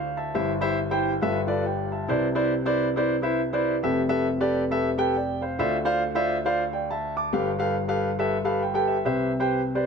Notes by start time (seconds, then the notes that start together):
Already playing: D2 D3 C5 F5
0.17 E5 A5
0.34 G1 G2 E4 G4 C5 E5
0.61 E4 G4 C5 E5
0.91 E4 G4 C5 G5
1.21 G1 G2 F4 A4 B4 E5
1.47 F4 A4 B4 D5
1.66 D5 G5
1.92 E5 A5
2.08 C2 C3 E4 B4 C5 D5
2.35 E4 B4 C5 D5
2.66 E4 B4 C5 D5
2.96 E4 B4 C5 D5
3.22 E4 B4 C5 E5
3.53 E4 B4 C5 D5
3.83 F1 F2 G4 A4 B4 E5
4.09 G4 A4 B4 E5
4.40 G4 A4 B4 D5
4.71 G4 A4 B4 E5
4.98 G4 A4 B4 G5
5.16 D5 G5
5.42 C5 F5
5.59 D2 D3 F4 C5 D5 E5
5.85 F4 C5 D5 F5
6.15 F4 C5 D5 E5
6.45 F4 C5 D5 F5
6.73 D5 G5
6.91 E5 A5
7.17 A5 D6
7.33 G1 G2 G4 A4 B4 F5
7.59 G4 A4 B4 F5
7.88 G4 A4 B4 F5
8.19 G4 A4 B4 E5
8.45 G4 A4 B4 F5 B5
8.62 G5
8.74 G4 A4 B4 G5
8.87 E5
9.05 C2 C3 G4 B4 C5 E5
9.40 G4 B4 C5 G5
9.75 G4 B4 C5 D5